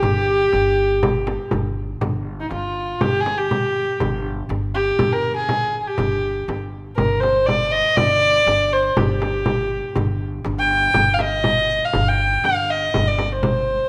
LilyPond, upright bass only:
\new Staff \with { instrumentName = "Upright bass" } { \clef bass \time 4/4 \tempo 4 = 121 g,,4 g,,2 g,,4 | g,,4 g,,4 g,,2 | g,,4 g,,4 g,,2 | g,,4 g,,4 g,,2 |
g,,4 g,,4 g,,2 | g,,4 g,,4 g,,2 | g,,4 g,,4 g,,2 | }